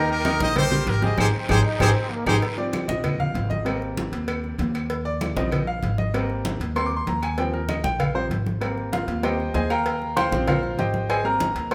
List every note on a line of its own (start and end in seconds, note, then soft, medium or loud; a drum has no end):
0.00 0.35 D#2 loud
0.00 0.20 D#3 medium
0.00 0.20 D#4 medium
0.00 0.20 D#5 medium
0.10 0.40 G4 medium
0.10 0.39 A#4 loud
0.10 high conga soft
0.25 0.51 D#3 medium
0.25 0.51 D#4 medium
0.25 0.51 D#5 loud
0.25 cowbell medium
0.25 high conga loud
0.25 short guiro medium
0.25 claves medium
0.40 0.84 A#1 medium
0.40 0.56 C5 medium
0.40 0.56 D#5 loud
0.40 high conga loud
0.40 short guiro medium
0.56 0.69 G3 medium
0.56 0.69 G4 medium
0.56 0.86 G4 medium
0.56 0.69 A#4 medium
0.56 0.85 C5 loud
0.56 cowbell loud
0.56 high conga soft
0.56 low conga loud
0.56 claves medium
0.71 0.97 G3 medium
0.71 0.97 G4 medium
0.71 0.97 A#4 medium
0.71 high conga soft
0.71 low conga medium
0.86 1.16 G#1 loud
0.86 1.04 G4 medium
0.86 1.03 A#4 loud
0.86 cowbell medium
0.86 high conga medium
0.86 short guiro medium
1.02 1.15 G3 medium
1.02 1.15 G4 medium
1.02 1.16 G#4 medium
1.02 1.18 C5 medium
1.02 1.18 D#5 medium
1.02 high conga loud
1.02 short guiro medium
1.18 1.30 G#1 medium
1.18 1.28 D#4 loud
1.18 1.28 G4 loud
1.18 1.27 G4 medium
1.18 1.28 G#4 loud
1.18 1.26 G#4 medium
1.18 1.26 C5 medium
1.18 cowbell medium
1.18 high conga loud
1.18 long guiro loud
1.18 claves loud
1.33 1.62 C4 loud
1.49 1.61 G#1 loud
1.49 1.59 D#4 loud
1.49 1.59 G4 loud
1.49 1.57 G4 medium
1.49 1.59 G#4 loud
1.49 1.57 G#4 medium
1.49 1.57 C5 medium
1.49 cowbell loud
1.49 high conga loud
1.49 claves loud
1.64 1.80 D#4 loud
1.80 1.92 G#1 loud
1.80 2.11 C4 loud
1.80 1.90 D#4 loud
1.80 1.90 G4 loud
1.80 1.88 G4 loud
1.80 1.90 G#4 medium
1.80 1.88 G#4 loud
1.80 1.88 C5 loud
1.80 cowbell loud
1.80 high conga loud
1.80 long guiro loud
1.80 claves loud
2.11 2.27 A#3 medium
2.26 2.38 G#1 loud
2.26 2.42 D#4 medium
2.26 2.37 D#4 loud
2.26 2.37 G4 medium
2.26 2.35 G4 loud
2.26 2.37 G#4 medium
2.26 2.35 G#4 medium
2.26 2.35 C5 medium
2.26 cowbell loud
2.26 high conga loud
2.26 long guiro loud
2.26 claves loud
2.42 cowbell loud
2.42 high conga soft
2.57 3.62 F3 medium
2.57 3.62 G3 soft
2.57 3.63 C4 medium
2.57 2.87 D5 medium
2.57 high conga soft
2.73 cowbell medium
2.73 high conga loud
2.73 claves medium
2.88 3.32 A#1 medium
2.88 3.17 D#5 loud
2.88 high conga loud
3.04 cowbell loud
3.04 high conga soft
3.04 low conga medium
3.04 claves medium
3.20 3.49 F5 loud
3.20 high conga soft
3.20 low conga medium
3.34 4.07 G#1 loud
3.34 cowbell medium
3.34 high conga medium
3.50 3.79 D#5 medium
3.50 high conga loud
3.65 4.85 G3 medium
3.65 4.86 A#3 soft
3.65 4.86 C4 medium
3.65 cowbell loud
3.65 high conga soft
3.65 claves medium
3.82 high conga soft
3.97 cowbell medium
3.97 high conga loud
4.12 4.56 D#2 medium
4.12 cowbell medium
4.12 high conga soft
4.28 cowbell loud
4.28 high conga soft
4.28 claves medium
4.44 high conga soft
4.58 5.31 D#2 loud
4.58 cowbell medium
4.58 high conga medium
4.75 cowbell medium
4.75 high conga soft
4.75 claves medium
4.90 cowbell loud
4.90 high conga soft
5.05 5.34 D5 medium
5.05 high conga soft
5.21 cowbell medium
5.21 high conga loud
5.21 claves medium
5.36 5.79 A#1 medium
5.36 5.57 F3 medium
5.36 5.57 G3 medium
5.36 5.57 C4 medium
5.36 5.65 D#5 medium
5.36 high conga loud
5.52 cowbell loud
5.52 high conga soft
5.52 low conga medium
5.52 claves medium
5.67 5.96 F5 medium
5.67 high conga soft
5.82 6.55 G#1 medium
5.82 cowbell medium
5.82 high conga medium
5.98 6.27 D#5 medium
5.98 high conga medium
6.14 6.58 G3 medium
6.14 6.58 A#3 medium
6.14 6.59 C4 medium
6.14 cowbell loud
6.14 high conga soft
6.14 claves medium
6.30 high conga soft
6.45 cowbell medium
6.45 high conga loud
6.60 7.03 D#2 medium
6.60 cowbell medium
6.60 high conga soft
6.76 6.90 G3 medium
6.76 6.90 A#3 soft
6.76 6.90 C4 medium
6.76 6.86 C6 loud
6.76 cowbell loud
6.76 high conga soft
6.76 claves medium
6.86 6.96 D6 medium
6.91 high conga soft
6.97 7.07 C6 medium
7.07 7.79 D#2 medium
7.07 7.22 A#5 medium
7.07 cowbell medium
7.07 high conga loud
7.22 7.38 G#5 medium
7.22 cowbell medium
7.22 high conga soft
7.22 claves medium
7.38 7.58 F3 medium
7.38 7.59 G3 medium
7.38 7.59 C4 medium
7.38 7.53 G5 medium
7.38 cowbell loud
7.38 high conga soft
7.54 7.68 A#4 medium
7.54 high conga soft
7.69 7.84 D#5 medium
7.69 cowbell medium
7.69 high conga loud
7.69 claves medium
7.84 8.27 A#1 medium
7.84 7.99 G5 loud
7.84 high conga loud
7.99 8.15 F5 medium
7.99 cowbell loud
7.99 high conga soft
7.99 low conga medium
7.99 claves medium
8.14 8.29 F3 medium
8.14 8.29 G3 soft
8.14 8.29 C4 medium
8.14 8.24 C5 medium
8.14 high conga soft
8.30 9.02 G#1 medium
8.30 cowbell medium
8.30 high conga medium
8.46 high conga medium
8.61 9.21 G3 medium
8.61 9.22 A#3 medium
8.61 9.22 C4 medium
8.61 cowbell loud
8.61 high conga soft
8.61 claves medium
8.77 high conga soft
8.93 9.22 F4 medium
8.93 9.21 F5 medium
8.93 cowbell medium
8.93 high conga loud
9.08 9.51 D#2 medium
9.08 cowbell medium
9.08 high conga soft
9.23 9.37 G3 medium
9.23 9.37 A#3 soft
9.23 9.38 C4 medium
9.23 9.52 G4 medium
9.23 9.53 C5 medium
9.23 9.53 D#5 medium
9.23 9.52 G5 medium
9.23 cowbell loud
9.23 high conga soft
9.23 claves medium
9.40 high conga soft
9.54 10.26 D#2 loud
9.54 9.70 G#4 medium
9.54 9.70 C5 medium
9.54 9.70 D#5 medium
9.54 9.69 G#5 medium
9.54 cowbell medium
9.54 high conga loud
9.70 10.14 A#4 medium
9.70 10.13 F5 medium
9.70 10.14 G5 medium
9.70 10.13 A#5 loud
9.70 cowbell medium
9.70 high conga soft
9.70 claves medium
9.86 cowbell loud
9.86 high conga soft
10.02 high conga soft
10.16 10.46 C5 medium
10.16 10.46 F5 medium
10.16 10.60 G5 medium
10.16 10.60 C6 loud
10.16 cowbell medium
10.16 high conga loud
10.16 claves medium
10.31 10.75 A#1 medium
10.31 10.52 F3 medium
10.31 10.53 G3 medium
10.31 10.53 C4 medium
10.31 high conga loud
10.47 10.77 F4 medium
10.47 10.77 A#4 medium
10.47 10.77 C5 medium
10.47 10.76 F5 loud
10.47 cowbell loud
10.47 high conga soft
10.47 low conga loud
10.47 claves medium
10.63 high conga soft
10.77 11.50 G#1 medium
10.77 11.08 G4 medium
10.77 11.08 C5 medium
10.77 11.08 D#5 medium
10.77 11.07 G5 medium
10.77 cowbell medium
10.77 high conga medium
10.94 high conga medium
11.10 11.25 G#4 medium
11.10 11.25 C5 medium
11.10 11.25 D#5 medium
11.10 11.24 G#5 loud
11.10 cowbell loud
11.10 high conga soft
11.10 claves medium
11.24 11.45 G3 medium
11.24 11.45 A#3 medium
11.24 11.46 C4 medium
11.24 11.68 A#4 medium
11.24 11.68 A#5 loud
11.24 high conga soft
11.40 cowbell medium
11.40 high conga loud
11.55 11.75 D#2 medium
11.55 cowbell medium
11.55 high conga soft
11.71 11.75 G3 medium
11.71 11.75 A#3 soft
11.71 11.75 C6 loud
11.71 cowbell loud
11.71 claves medium